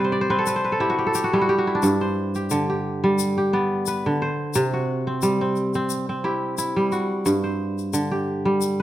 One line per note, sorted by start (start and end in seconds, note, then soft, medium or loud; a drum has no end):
0.00 1.45 C3 medium
0.00 1.32 G3 medium
0.00 0.27 B4 medium
0.00 0.12 D5 medium
0.00 0.74 E5 medium
0.00 0.47 G5 medium
0.04 0.21 C5 medium
0.12 1.23 D5 medium
0.21 0.53 C5 medium
0.30 0.71 C4 medium
0.30 0.46 B4 medium
0.38 0.72 A4 medium
0.46 0.64 B4 medium
0.46 shaker medium
0.56 1.75 C5 medium
0.65 1.87 B4 medium
0.72 1.06 A4 medium
0.80 1.33 E4 medium
0.80 0.98 G4 medium
0.90 1.21 F#4 medium
0.99 1.14 G4 medium
1.06 2.38 A4 medium
1.14 1.47 G4 medium
1.14 shaker medium
1.24 1.41 F#4 medium
1.33 1.87 G3 medium
1.33 1.67 E4 medium
1.41 1.58 F#4 medium
1.49 2.35 G4 medium
1.58 1.89 F#4 medium
1.67 3.24 E4 medium
1.75 3.43 D4 medium
1.83 4.17 G2 medium
1.83 shaker medium
2.01 3.20 C5 medium
2.35 2.69 G4 medium
2.35 shaker soft
2.50 4.05 D3 medium
2.50 shaker medium
2.70 3.37 G4 medium
3.04 4.08 G3 medium
3.19 shaker medium
3.38 4.79 G4 medium
3.53 4.28 B3 medium
3.53 4.64 D5 medium
3.86 4.61 B4 medium
3.86 shaker medium
4.06 4.59 D3 medium
4.22 5.41 C5 medium
4.54 6.89 C3 medium
4.54 shaker medium
4.73 5.29 F#4 medium
5.07 5.41 C4 medium
5.22 6.75 G3 medium
5.22 shaker medium
5.41 5.75 C4 medium
5.56 shaker soft
5.74 6.09 C4 medium
5.74 shaker soft
5.90 shaker medium
6.09 7.89 C4 medium
6.24 6.58 E4 medium
6.24 6.98 G4 medium
6.58 8.15 E4 medium
6.58 shaker medium
6.76 7.30 G3 medium
6.92 8.17 F#4 medium
6.92 shaker soft
7.26 8.82 G2 medium
7.26 shaker medium
7.44 8.62 C5 medium
7.78 shaker soft
7.93 8.82 D3 medium
7.93 shaker medium
8.11 8.82 G4 medium
8.45 8.82 G3 medium
8.61 shaker medium